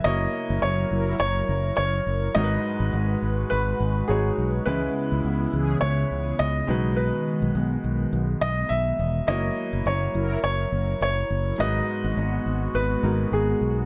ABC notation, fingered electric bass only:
X:1
M:4/4
L:1/16
Q:"Swing 16ths" 1/4=104
K:F#mix
V:1 name="Fingered electric bass" clef=bass
F,,,2 z F,,, F,,,2 F,,,2 F,,,2 F,,,2 F,,,2 F,,,2 | G,,,2 z G,,, G,,,2 G,,,2 G,,,2 G,,,2 G,,,2 B,,,2 | C,,2 z C,, C,,2 C,,2 C,,2 C,,2 C,,2 B,,,2- | B,,,2 z B,,, B,,,2 B,,,2 B,,,2 B,,,2 B,,,2 E,,,2 |
F,,,2 z F,,, F,,,2 F,,,2 F,,,2 F,,,2 F,,,2 F,,,2 | G,,,2 z G,,, G,,,2 G,,,2 G,,,2 G,,,2 G,,,2 B,,,2 |]